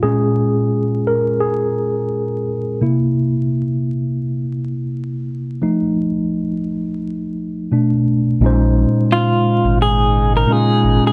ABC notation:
X:1
M:4/4
L:1/16
Q:"Swing 16ths" 1/4=86
K:Bbm
V:1 name="Clean electric guitar"
z16 | z16 | z16 | z4 F4 A3 B A3 A |]
V:2 name="Tine electric piano"
A6 B2 A6 z2 | z16 | z16 | [B,,A,DEc]8 z4 [B,,A,DEF]4 |]
V:3 name="Tine electric piano"
[B,,A,D]2 z12 z2 | [C,B,=E]2 z12 z2 | [F,=A,E]2 z8 z2 [=B,,A,=D]4 | z16 |]
V:4 name="Ambient pad"
z16 | z16 | z16 | [D,A,DE]16 |]
V:5 name="Sub bass" clef=bass
z16 | z16 | z16 | B,,,3 z4 A,,,4- A,,, z2 A,,, z |]